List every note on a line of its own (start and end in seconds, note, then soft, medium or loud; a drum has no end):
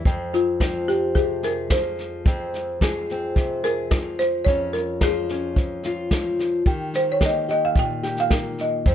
0.05 2.26 F2 medium
0.05 0.61 C4 medium
0.05 kick medium
0.05 snare soft
0.33 0.90 F4 medium
0.33 snare soft
0.60 1.70 F3 medium
0.60 0.89 C4 medium
0.60 kick medium
0.60 snare medium
0.88 2.26 C4 medium
0.88 1.17 G4 medium
0.88 snare soft
1.15 1.71 C3 medium
1.15 1.41 G#4 medium
1.15 kick medium
1.15 snare soft
1.43 2.83 G#4 medium
1.43 1.57 A#4 medium
1.43 snare soft
1.70 2.82 F3 medium
1.70 2.22 C5 medium
1.70 kick medium
1.70 snare medium
1.99 snare soft
2.25 4.45 F2 medium
2.25 3.09 C4 medium
2.25 kick medium
2.25 snare soft
2.54 snare soft
2.81 3.90 F3 medium
2.81 3.63 G#4 medium
2.81 kick medium
2.81 snare medium
3.09 4.47 C4 medium
3.09 snare soft
3.36 3.91 C3 medium
3.36 kick medium
3.36 snare soft
3.63 4.43 G#4 medium
3.63 4.20 A#4 medium
3.63 snare soft
3.91 4.43 F3 medium
3.91 kick medium
3.91 snare medium
4.19 4.47 C5 medium
4.19 snare soft
4.45 5.55 F2 medium
4.45 5.29 C#4 medium
4.45 4.57 C#5 medium
4.45 kick medium
4.45 snare soft
4.73 5.02 A#4 medium
4.73 snare soft
5.01 6.11 F3 medium
5.01 5.84 F4 medium
5.01 5.53 G#4 medium
5.01 kick medium
5.01 snare medium
5.29 6.64 C#4 medium
5.29 snare soft
5.56 6.66 F2 medium
5.56 kick medium
5.56 snare soft
5.83 6.67 F4 medium
5.83 snare soft
6.11 6.63 F3 medium
6.11 kick medium
6.11 snare medium
6.39 snare soft
6.66 8.86 D#3 medium
6.66 7.21 G4 medium
6.66 kick medium
6.66 snare soft
6.94 7.09 C5 medium
6.94 snare soft
7.12 7.24 C#5 medium
7.21 8.29 A#3 medium
7.21 7.47 G4 medium
7.21 kick medium
7.21 snare medium
7.26 7.49 D#5 medium
7.48 8.02 G4 medium
7.48 7.62 D#5 medium
7.48 snare soft
7.65 7.70 F5 medium
7.75 8.86 A#2 medium
7.75 8.20 G5 loud
7.75 kick medium
7.75 snare soft
8.03 8.82 G4 medium
8.03 snare soft
8.17 8.61 F5 medium
8.17 snare soft
8.30 8.82 A#3 medium
8.30 kick medium
8.30 snare medium
8.58 8.88 D#5 medium
8.58 snare soft
8.86 8.95 F2 medium
8.86 8.95 C4 medium
8.86 8.95 C5 medium
8.86 kick medium
8.86 snare soft